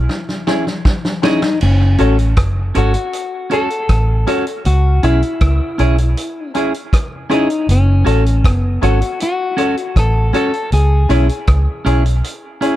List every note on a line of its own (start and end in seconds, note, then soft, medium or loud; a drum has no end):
0.00 0.83 E4 medium
0.09 snare medium
0.29 snare medium
0.47 0.61 C#4 medium
0.47 0.65 C#4 medium
0.47 0.61 E4 medium
0.47 0.65 E4 medium
0.47 0.62 G#4 medium
0.47 0.65 G#4 medium
0.47 0.62 C#5 medium
0.47 snare medium
0.67 snare medium
0.85 kick loud
0.85 snare medium
1.05 snare medium
1.22 1.37 C#4 medium
1.22 1.40 C#4 medium
1.22 1.62 D#4 loud
1.22 1.37 E4 medium
1.22 1.41 E4 medium
1.22 1.37 G#4 medium
1.22 1.41 G#4 loud
1.22 1.37 C#5 medium
1.22 snare loud
1.42 1.50 G#4 soft
1.42 1.50 C#5 soft
1.42 snare medium
1.61 1.96 F#1 loud
1.61 2.34 C#4 medium
1.61 crash medium
1.98 2.38 A1 medium
1.98 2.16 C#4 medium
1.98 2.13 C#4 medium
1.98 2.13 F#4 medium
1.98 2.16 F#4 medium
1.98 2.16 A4 medium
1.98 2.13 A4 medium
1.98 2.13 C#5 loud
1.98 closed hi-hat medium
2.19 closed hi-hat medium
2.37 2.72 F#1 medium
2.37 kick loud
2.37 cross-stick loud
2.37 closed hi-hat medium
2.75 2.94 G#1 medium
2.75 2.92 C#4 medium
2.75 2.89 C#4 medium
2.75 2.92 F#4 medium
2.75 2.89 F#4 medium
2.75 3.53 F#4 loud
2.75 2.89 A4 medium
2.75 2.92 A4 medium
2.75 2.89 C#5 loud
2.75 closed hi-hat medium
2.94 3.02 A4 soft
2.94 3.02 C#5 soft
2.94 muted clean electric guitar stroke soft
2.94 closed hi-hat medium
3.13 closed hi-hat loud
3.50 3.67 C#4 medium
3.50 3.65 C#4 medium
3.50 3.65 F#4 medium
3.50 3.68 F#4 medium
3.50 3.65 A4 medium
3.50 3.68 A4 medium
3.50 4.66 A4 loud
3.50 3.65 C#5 medium
3.50 closed hi-hat medium
3.70 closed hi-hat soft
3.89 4.24 A1 medium
3.89 kick medium
3.89 cross-stick medium
3.89 closed hi-hat loud
4.26 4.40 C#4 medium
4.26 4.44 C#4 medium
4.26 4.41 F#4 medium
4.26 4.44 F#4 loud
4.26 4.41 A4 medium
4.26 4.45 A4 medium
4.26 4.41 C#5 loud
4.26 closed hi-hat medium
4.47 4.54 A4 soft
4.47 4.54 C#5 soft
4.47 closed hi-hat medium
4.65 5.00 C#2 loud
4.65 5.05 F#4 medium
4.65 closed hi-hat medium
5.03 5.21 B1 medium
5.03 5.17 C#4 medium
5.03 5.20 C#4 medium
5.03 5.17 E4 medium
5.03 5.20 E4 medium
5.03 6.51 E4 medium
5.03 5.17 G#4 medium
5.03 5.21 G#4 medium
5.03 5.17 C#5 loud
5.03 closed hi-hat medium
5.22 closed hi-hat soft
5.41 5.59 C#2 medium
5.41 kick loud
5.41 cross-stick loud
5.41 closed hi-hat medium
5.78 6.14 B1 medium
5.78 5.95 C#4 medium
5.78 5.92 C#4 medium
5.78 5.93 E4 medium
5.78 5.96 E4 medium
5.78 5.93 G#4 medium
5.78 5.96 G#4 medium
5.78 5.93 C#5 medium
5.78 closed hi-hat medium
5.98 6.06 G#4 soft
5.98 6.06 C#5 soft
5.98 muted clean electric guitar stroke soft
5.98 closed hi-hat medium
6.17 closed hi-hat loud
6.54 6.68 C#4 medium
6.54 6.72 C#4 medium
6.54 6.68 E4 medium
6.54 6.72 E4 medium
6.54 6.68 G#4 medium
6.54 6.72 G#4 medium
6.54 6.69 C#5 medium
6.54 closed hi-hat medium
6.74 closed hi-hat soft
6.93 kick loud
6.93 cross-stick loud
6.93 closed hi-hat medium
7.29 7.44 C#4 medium
7.29 7.47 C#4 medium
7.29 7.71 D#4 medium
7.29 7.44 E4 medium
7.29 7.47 E4 medium
7.29 7.44 G#4 medium
7.29 7.48 G#4 loud
7.29 7.44 C#5 loud
7.29 closed hi-hat medium
7.50 7.57 G#4 soft
7.50 7.57 C#5 soft
7.50 closed hi-hat soft
7.69 8.03 F#1 loud
7.69 8.51 C#4 medium
7.69 closed hi-hat loud
8.05 8.45 A1 loud
8.05 8.23 C#4 medium
8.05 8.19 C#4 medium
8.05 8.20 F#4 medium
8.05 8.23 F#4 medium
8.05 8.20 A4 medium
8.05 8.23 A4 medium
8.05 8.20 C#5 loud
8.05 closed hi-hat medium
8.26 closed hi-hat medium
8.44 8.79 F#1 medium
8.44 kick loud
8.44 cross-stick loud
8.44 closed hi-hat medium
8.51 8.87 B3 medium
8.81 9.00 G#1 medium
8.81 8.96 C#4 medium
8.81 8.99 C#4 medium
8.81 8.96 F#4 medium
8.81 9.00 F#4 medium
8.81 9.22 F#4 medium
8.81 8.96 A4 medium
8.81 9.00 A4 medium
8.81 8.96 C#5 loud
8.81 closed hi-hat medium
9.01 9.09 A4 soft
9.01 9.09 C#5 soft
9.01 muted clean electric guitar stroke soft
9.01 closed hi-hat medium
9.20 9.99 F#4 medium
9.20 closed hi-hat loud
9.57 9.75 C#4 medium
9.57 9.72 C#4 medium
9.57 9.75 F#4 medium
9.57 9.72 F#4 medium
9.57 9.75 A4 loud
9.57 9.72 A4 medium
9.57 9.72 C#5 loud
9.57 closed hi-hat medium
9.77 closed hi-hat medium
9.96 10.31 A1 medium
9.96 10.35 A4 loud
9.96 kick loud
9.96 cross-stick medium
9.96 closed hi-hat medium
10.33 10.47 C#4 medium
10.33 10.51 C#4 medium
10.33 10.48 F#4 medium
10.33 10.51 F#4 medium
10.33 10.48 A4 medium
10.33 10.51 A4 loud
10.33 10.73 A4 loud
10.33 10.48 C#5 loud
10.33 closed hi-hat medium
10.53 10.61 A4 soft
10.53 10.61 C#5 soft
10.53 closed hi-hat soft
10.72 11.07 C#2 loud
10.72 12.76 G#4 medium
10.72 closed hi-hat medium
11.09 11.28 B1 medium
11.09 11.23 C#4 medium
11.09 11.27 C#4 medium
11.09 11.24 E4 medium
11.09 11.27 E4 medium
11.09 11.24 G#4 medium
11.09 11.27 G#4 medium
11.09 11.24 C#5 loud
11.09 closed hi-hat medium
11.29 closed hi-hat medium
11.47 11.66 C#2 medium
11.47 kick loud
11.47 cross-stick loud
11.47 closed hi-hat medium
11.85 12.21 B1 medium
11.85 12.02 C#4 medium
11.85 12.00 C#4 medium
11.85 12.03 E4 medium
11.85 12.00 E4 medium
11.85 12.03 G#4 medium
11.85 12.00 G#4 medium
11.85 12.00 C#5 loud
11.85 closed hi-hat medium
12.05 12.13 G#4 soft
12.05 12.13 C#5 soft
12.05 muted clean electric guitar stroke medium
12.05 closed hi-hat medium
12.24 closed hi-hat loud
12.61 12.76 C#4 medium
12.61 12.76 E4 medium
12.61 12.76 G#4 medium
12.61 12.76 C#5 medium
12.61 closed hi-hat medium